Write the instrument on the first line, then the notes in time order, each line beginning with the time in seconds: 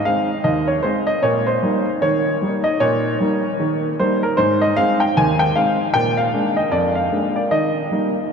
upright piano
0.05 G#3 C4 D#4 F5
0.44 D#2 D#5
0.68 C#5
0.83 G#3 C4 D#4 C5
1.07 D#5
1.23 A#2 C#5
1.47 C5
1.63 G3 A#3 D#4
2.02 D#3 C#5
2.42 G3 A#3 D#4
2.64 D#5
2.80 A#2 C#5
3.20 G3 A#3 D#4
3.60 D#3
4.00 G3 A#3 D#4 C5
4.23 A#4
4.37 G#2 C5
4.61 D#5
4.77 G#3 C4 D#4 F5
5.00 G5
5.17 D#2 G#5
5.39 G5
5.55 G#3 C4 D#4 F5
5.94 A#2 G5
6.17 F5
6.34 G#3 A#3 D4
6.57 D#5
6.72 F2 D5
6.95 F5
7.11 G#3 A#3 D4
7.36 D5
7.51 D#3 D#5
7.92 G3 A#3 D#4